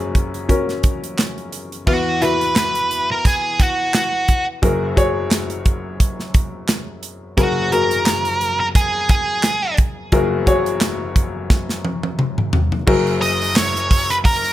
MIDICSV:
0, 0, Header, 1, 4, 480
1, 0, Start_track
1, 0, Tempo, 688073
1, 1305, Time_signature, 4, 2, 24, 8
1, 10135, End_track
2, 0, Start_track
2, 0, Title_t, "Lead electric guitar"
2, 0, Program_c, 0, 29
2, 1310, Note_on_c, 0, 66, 86
2, 1548, Note_on_c, 0, 71, 89
2, 1555, Note_off_c, 0, 66, 0
2, 1786, Note_off_c, 0, 71, 0
2, 1794, Note_on_c, 0, 71, 87
2, 2170, Note_off_c, 0, 71, 0
2, 2173, Note_on_c, 0, 70, 69
2, 2275, Note_off_c, 0, 70, 0
2, 2278, Note_on_c, 0, 68, 78
2, 2515, Note_on_c, 0, 66, 64
2, 2519, Note_off_c, 0, 68, 0
2, 2734, Note_off_c, 0, 66, 0
2, 2754, Note_on_c, 0, 66, 63
2, 3099, Note_off_c, 0, 66, 0
2, 5149, Note_on_c, 0, 66, 86
2, 5386, Note_on_c, 0, 70, 107
2, 5394, Note_off_c, 0, 66, 0
2, 5993, Note_off_c, 0, 70, 0
2, 6001, Note_on_c, 0, 70, 80
2, 6036, Note_off_c, 0, 70, 0
2, 6110, Note_on_c, 0, 68, 92
2, 6343, Note_off_c, 0, 68, 0
2, 6352, Note_on_c, 0, 68, 79
2, 6800, Note_off_c, 0, 68, 0
2, 9220, Note_on_c, 0, 75, 99
2, 9461, Note_off_c, 0, 75, 0
2, 9464, Note_on_c, 0, 73, 90
2, 9839, Note_on_c, 0, 71, 71
2, 9848, Note_off_c, 0, 73, 0
2, 9874, Note_off_c, 0, 71, 0
2, 9943, Note_on_c, 0, 70, 95
2, 10135, Note_off_c, 0, 70, 0
2, 10135, End_track
3, 0, Start_track
3, 0, Title_t, "Upright piano"
3, 0, Program_c, 1, 0
3, 0, Control_c, 1, 64, 127
3, 0, Note_on_c, 1, 30, 72
3, 0, Note_on_c, 1, 42, 75
3, 0, Note_on_c, 1, 61, 73
3, 0, Note_on_c, 1, 66, 64
3, 0, Note_on_c, 1, 68, 77
3, 0, Note_on_c, 1, 70, 79
3, 302, Note_off_c, 1, 61, 0
3, 305, Note_off_c, 1, 66, 0
3, 307, Note_off_c, 1, 68, 0
3, 339, Note_on_c, 1, 61, 66
3, 344, Note_on_c, 1, 66, 58
3, 348, Note_off_c, 1, 70, 0
3, 348, Note_on_c, 1, 70, 66
3, 1242, Note_off_c, 1, 61, 0
3, 1244, Note_off_c, 1, 66, 0
3, 1246, Note_off_c, 1, 70, 0
3, 1278, Note_off_c, 1, 30, 0
3, 1278, Note_off_c, 1, 42, 0
3, 1301, Note_on_c, 1, 64, 72
3, 1307, Note_on_c, 1, 52, 57
3, 1307, Note_on_c, 1, 66, 58
3, 1308, Note_on_c, 1, 40, 61
3, 1313, Note_on_c, 1, 71, 73
3, 1314, Control_c, 1, 64, 0
3, 1441, Control_c, 1, 64, 127
3, 1528, Note_off_c, 1, 64, 0
3, 1531, Note_off_c, 1, 66, 0
3, 1534, Note_off_c, 1, 71, 0
3, 1540, Note_on_c, 1, 64, 71
3, 1545, Note_on_c, 1, 66, 58
3, 1551, Note_on_c, 1, 71, 77
3, 2443, Note_off_c, 1, 64, 0
3, 2445, Note_off_c, 1, 66, 0
3, 2448, Note_off_c, 1, 71, 0
3, 3199, Note_off_c, 1, 52, 0
3, 3200, Note_off_c, 1, 40, 0
3, 3224, Note_on_c, 1, 66, 81
3, 3227, Note_on_c, 1, 68, 74
3, 3228, Note_on_c, 1, 42, 68
3, 3229, Note_on_c, 1, 30, 72
3, 3232, Note_on_c, 1, 70, 87
3, 3235, Control_c, 1, 64, 0
3, 3353, Control_c, 1, 64, 127
3, 3450, Note_off_c, 1, 66, 0
3, 3452, Note_off_c, 1, 68, 0
3, 3454, Note_off_c, 1, 70, 0
3, 3461, Note_on_c, 1, 66, 76
3, 3465, Note_on_c, 1, 68, 78
3, 3471, Note_on_c, 1, 73, 90
3, 4363, Note_off_c, 1, 66, 0
3, 4365, Note_off_c, 1, 68, 0
3, 4368, Note_off_c, 1, 73, 0
3, 5119, Note_off_c, 1, 42, 0
3, 5120, Note_off_c, 1, 30, 0
3, 5140, Note_on_c, 1, 66, 65
3, 5145, Note_on_c, 1, 30, 64
3, 5145, Note_on_c, 1, 68, 66
3, 5146, Note_on_c, 1, 42, 60
3, 5151, Note_on_c, 1, 70, 77
3, 5368, Note_off_c, 1, 66, 0
3, 5370, Note_off_c, 1, 68, 0
3, 5373, Note_off_c, 1, 70, 0
3, 5380, Note_on_c, 1, 66, 75
3, 5386, Note_on_c, 1, 68, 59
3, 5389, Note_on_c, 1, 70, 75
3, 6282, Note_off_c, 1, 66, 0
3, 6285, Note_off_c, 1, 68, 0
3, 6286, Note_off_c, 1, 70, 0
3, 7036, Note_off_c, 1, 30, 0
3, 7037, Note_off_c, 1, 42, 0
3, 7060, Note_on_c, 1, 66, 86
3, 7064, Note_on_c, 1, 30, 76
3, 7064, Note_on_c, 1, 68, 81
3, 7066, Note_on_c, 1, 42, 77
3, 7069, Note_on_c, 1, 70, 92
3, 7287, Note_off_c, 1, 66, 0
3, 7289, Note_off_c, 1, 68, 0
3, 7291, Note_off_c, 1, 70, 0
3, 7299, Note_on_c, 1, 66, 90
3, 7304, Note_on_c, 1, 68, 76
3, 7308, Note_on_c, 1, 73, 91
3, 8200, Note_off_c, 1, 66, 0
3, 8203, Note_off_c, 1, 68, 0
3, 8205, Note_off_c, 1, 73, 0
3, 8954, Note_off_c, 1, 30, 0
3, 8955, Note_off_c, 1, 42, 0
3, 8976, Note_on_c, 1, 66, 88
3, 8981, Note_on_c, 1, 30, 78
3, 8981, Note_on_c, 1, 42, 79
3, 8981, Note_on_c, 1, 68, 79
3, 8985, Note_on_c, 1, 70, 104
3, 8992, Control_c, 1, 64, 0
3, 9095, Control_c, 1, 64, 127
3, 9878, Note_off_c, 1, 66, 0
3, 9880, Note_off_c, 1, 68, 0
3, 9882, Note_off_c, 1, 70, 0
3, 10135, Note_off_c, 1, 30, 0
3, 10135, Note_off_c, 1, 42, 0
3, 10135, End_track
4, 0, Start_track
4, 0, Title_t, "Drums"
4, 105, Note_on_c, 9, 36, 79
4, 106, Note_on_c, 9, 42, 57
4, 174, Note_off_c, 9, 36, 0
4, 176, Note_off_c, 9, 42, 0
4, 239, Note_on_c, 9, 42, 46
4, 309, Note_off_c, 9, 42, 0
4, 344, Note_on_c, 9, 36, 71
4, 347, Note_on_c, 9, 42, 74
4, 414, Note_off_c, 9, 36, 0
4, 416, Note_off_c, 9, 42, 0
4, 480, Note_on_c, 9, 38, 31
4, 482, Note_on_c, 9, 42, 28
4, 550, Note_off_c, 9, 38, 0
4, 552, Note_off_c, 9, 42, 0
4, 582, Note_on_c, 9, 42, 68
4, 585, Note_on_c, 9, 36, 86
4, 651, Note_off_c, 9, 42, 0
4, 654, Note_off_c, 9, 36, 0
4, 723, Note_on_c, 9, 42, 51
4, 793, Note_off_c, 9, 42, 0
4, 825, Note_on_c, 9, 39, 64
4, 826, Note_on_c, 9, 42, 67
4, 829, Note_on_c, 9, 38, 79
4, 895, Note_off_c, 9, 39, 0
4, 895, Note_off_c, 9, 42, 0
4, 899, Note_off_c, 9, 38, 0
4, 961, Note_on_c, 9, 42, 27
4, 1031, Note_off_c, 9, 42, 0
4, 1064, Note_on_c, 9, 42, 66
4, 1134, Note_off_c, 9, 42, 0
4, 1202, Note_on_c, 9, 42, 40
4, 1272, Note_off_c, 9, 42, 0
4, 1305, Note_on_c, 9, 36, 93
4, 1305, Note_on_c, 9, 49, 78
4, 1375, Note_off_c, 9, 36, 0
4, 1375, Note_off_c, 9, 49, 0
4, 1547, Note_on_c, 9, 42, 61
4, 1617, Note_off_c, 9, 42, 0
4, 1683, Note_on_c, 9, 42, 52
4, 1752, Note_off_c, 9, 42, 0
4, 1782, Note_on_c, 9, 39, 73
4, 1786, Note_on_c, 9, 38, 96
4, 1789, Note_on_c, 9, 42, 62
4, 1852, Note_off_c, 9, 39, 0
4, 1856, Note_off_c, 9, 38, 0
4, 1859, Note_off_c, 9, 42, 0
4, 1919, Note_on_c, 9, 42, 49
4, 1989, Note_off_c, 9, 42, 0
4, 2029, Note_on_c, 9, 42, 64
4, 2099, Note_off_c, 9, 42, 0
4, 2268, Note_on_c, 9, 36, 88
4, 2271, Note_on_c, 9, 42, 82
4, 2337, Note_off_c, 9, 36, 0
4, 2340, Note_off_c, 9, 42, 0
4, 2508, Note_on_c, 9, 36, 84
4, 2509, Note_on_c, 9, 42, 74
4, 2578, Note_off_c, 9, 36, 0
4, 2579, Note_off_c, 9, 42, 0
4, 2749, Note_on_c, 9, 39, 73
4, 2749, Note_on_c, 9, 42, 74
4, 2752, Note_on_c, 9, 38, 86
4, 2818, Note_off_c, 9, 39, 0
4, 2818, Note_off_c, 9, 42, 0
4, 2822, Note_off_c, 9, 38, 0
4, 2987, Note_on_c, 9, 42, 68
4, 2990, Note_on_c, 9, 36, 70
4, 3057, Note_off_c, 9, 42, 0
4, 3060, Note_off_c, 9, 36, 0
4, 3228, Note_on_c, 9, 36, 101
4, 3232, Note_on_c, 9, 42, 77
4, 3298, Note_off_c, 9, 36, 0
4, 3302, Note_off_c, 9, 42, 0
4, 3469, Note_on_c, 9, 36, 82
4, 3472, Note_on_c, 9, 42, 69
4, 3538, Note_off_c, 9, 36, 0
4, 3542, Note_off_c, 9, 42, 0
4, 3703, Note_on_c, 9, 39, 75
4, 3707, Note_on_c, 9, 38, 95
4, 3710, Note_on_c, 9, 42, 73
4, 3773, Note_off_c, 9, 39, 0
4, 3777, Note_off_c, 9, 38, 0
4, 3779, Note_off_c, 9, 42, 0
4, 3836, Note_on_c, 9, 42, 47
4, 3906, Note_off_c, 9, 42, 0
4, 3945, Note_on_c, 9, 42, 56
4, 3946, Note_on_c, 9, 36, 77
4, 4015, Note_off_c, 9, 42, 0
4, 4016, Note_off_c, 9, 36, 0
4, 4186, Note_on_c, 9, 36, 77
4, 4187, Note_on_c, 9, 42, 83
4, 4256, Note_off_c, 9, 36, 0
4, 4256, Note_off_c, 9, 42, 0
4, 4322, Note_on_c, 9, 38, 31
4, 4392, Note_off_c, 9, 38, 0
4, 4424, Note_on_c, 9, 42, 75
4, 4427, Note_on_c, 9, 36, 92
4, 4494, Note_off_c, 9, 42, 0
4, 4496, Note_off_c, 9, 36, 0
4, 4662, Note_on_c, 9, 39, 66
4, 4662, Note_on_c, 9, 42, 72
4, 4666, Note_on_c, 9, 38, 91
4, 4732, Note_off_c, 9, 39, 0
4, 4732, Note_off_c, 9, 42, 0
4, 4735, Note_off_c, 9, 38, 0
4, 4902, Note_on_c, 9, 42, 65
4, 4972, Note_off_c, 9, 42, 0
4, 5145, Note_on_c, 9, 42, 83
4, 5146, Note_on_c, 9, 36, 101
4, 5215, Note_off_c, 9, 36, 0
4, 5215, Note_off_c, 9, 42, 0
4, 5388, Note_on_c, 9, 42, 64
4, 5457, Note_off_c, 9, 42, 0
4, 5518, Note_on_c, 9, 42, 58
4, 5588, Note_off_c, 9, 42, 0
4, 5623, Note_on_c, 9, 39, 82
4, 5627, Note_on_c, 9, 38, 90
4, 5629, Note_on_c, 9, 42, 67
4, 5693, Note_off_c, 9, 39, 0
4, 5696, Note_off_c, 9, 38, 0
4, 5699, Note_off_c, 9, 42, 0
4, 5755, Note_on_c, 9, 42, 49
4, 5825, Note_off_c, 9, 42, 0
4, 5866, Note_on_c, 9, 42, 54
4, 5936, Note_off_c, 9, 42, 0
4, 6105, Note_on_c, 9, 36, 89
4, 6106, Note_on_c, 9, 42, 84
4, 6175, Note_off_c, 9, 36, 0
4, 6176, Note_off_c, 9, 42, 0
4, 6342, Note_on_c, 9, 42, 78
4, 6345, Note_on_c, 9, 36, 93
4, 6412, Note_off_c, 9, 42, 0
4, 6414, Note_off_c, 9, 36, 0
4, 6579, Note_on_c, 9, 39, 72
4, 6579, Note_on_c, 9, 42, 77
4, 6583, Note_on_c, 9, 38, 89
4, 6649, Note_off_c, 9, 39, 0
4, 6649, Note_off_c, 9, 42, 0
4, 6653, Note_off_c, 9, 38, 0
4, 6818, Note_on_c, 9, 42, 71
4, 6825, Note_on_c, 9, 36, 91
4, 6888, Note_off_c, 9, 42, 0
4, 6895, Note_off_c, 9, 36, 0
4, 7060, Note_on_c, 9, 42, 76
4, 7063, Note_on_c, 9, 36, 100
4, 7130, Note_off_c, 9, 42, 0
4, 7133, Note_off_c, 9, 36, 0
4, 7304, Note_on_c, 9, 36, 83
4, 7304, Note_on_c, 9, 42, 67
4, 7374, Note_off_c, 9, 36, 0
4, 7374, Note_off_c, 9, 42, 0
4, 7438, Note_on_c, 9, 42, 52
4, 7508, Note_off_c, 9, 42, 0
4, 7540, Note_on_c, 9, 39, 81
4, 7543, Note_on_c, 9, 38, 95
4, 7546, Note_on_c, 9, 42, 69
4, 7609, Note_off_c, 9, 39, 0
4, 7613, Note_off_c, 9, 38, 0
4, 7616, Note_off_c, 9, 42, 0
4, 7784, Note_on_c, 9, 36, 83
4, 7784, Note_on_c, 9, 42, 60
4, 7854, Note_off_c, 9, 36, 0
4, 7854, Note_off_c, 9, 42, 0
4, 8023, Note_on_c, 9, 36, 88
4, 8023, Note_on_c, 9, 38, 57
4, 8093, Note_off_c, 9, 36, 0
4, 8093, Note_off_c, 9, 38, 0
4, 8158, Note_on_c, 9, 38, 49
4, 8228, Note_off_c, 9, 38, 0
4, 8264, Note_on_c, 9, 48, 69
4, 8333, Note_off_c, 9, 48, 0
4, 8395, Note_on_c, 9, 48, 67
4, 8465, Note_off_c, 9, 48, 0
4, 8502, Note_on_c, 9, 47, 81
4, 8572, Note_off_c, 9, 47, 0
4, 8636, Note_on_c, 9, 45, 70
4, 8706, Note_off_c, 9, 45, 0
4, 8741, Note_on_c, 9, 43, 100
4, 8810, Note_off_c, 9, 43, 0
4, 8874, Note_on_c, 9, 43, 71
4, 8944, Note_off_c, 9, 43, 0
4, 8981, Note_on_c, 9, 49, 88
4, 8982, Note_on_c, 9, 36, 112
4, 9051, Note_off_c, 9, 36, 0
4, 9051, Note_off_c, 9, 49, 0
4, 9116, Note_on_c, 9, 46, 36
4, 9185, Note_off_c, 9, 46, 0
4, 9222, Note_on_c, 9, 44, 65
4, 9224, Note_on_c, 9, 46, 71
4, 9292, Note_off_c, 9, 44, 0
4, 9294, Note_off_c, 9, 46, 0
4, 9359, Note_on_c, 9, 44, 67
4, 9360, Note_on_c, 9, 46, 62
4, 9429, Note_off_c, 9, 44, 0
4, 9430, Note_off_c, 9, 46, 0
4, 9459, Note_on_c, 9, 39, 82
4, 9462, Note_on_c, 9, 44, 60
4, 9463, Note_on_c, 9, 38, 104
4, 9465, Note_on_c, 9, 46, 74
4, 9529, Note_off_c, 9, 39, 0
4, 9532, Note_off_c, 9, 38, 0
4, 9532, Note_off_c, 9, 44, 0
4, 9535, Note_off_c, 9, 46, 0
4, 9595, Note_on_c, 9, 46, 32
4, 9599, Note_on_c, 9, 44, 60
4, 9664, Note_off_c, 9, 46, 0
4, 9669, Note_off_c, 9, 44, 0
4, 9702, Note_on_c, 9, 36, 85
4, 9702, Note_on_c, 9, 44, 64
4, 9703, Note_on_c, 9, 46, 62
4, 9772, Note_off_c, 9, 36, 0
4, 9772, Note_off_c, 9, 44, 0
4, 9773, Note_off_c, 9, 46, 0
4, 9837, Note_on_c, 9, 44, 61
4, 9837, Note_on_c, 9, 46, 56
4, 9907, Note_off_c, 9, 44, 0
4, 9907, Note_off_c, 9, 46, 0
4, 9940, Note_on_c, 9, 36, 89
4, 9941, Note_on_c, 9, 44, 62
4, 9943, Note_on_c, 9, 46, 86
4, 10010, Note_off_c, 9, 36, 0
4, 10011, Note_off_c, 9, 44, 0
4, 10013, Note_off_c, 9, 46, 0
4, 10075, Note_on_c, 9, 44, 66
4, 10078, Note_on_c, 9, 46, 40
4, 10135, Note_off_c, 9, 44, 0
4, 10135, Note_off_c, 9, 46, 0
4, 10135, End_track
0, 0, End_of_file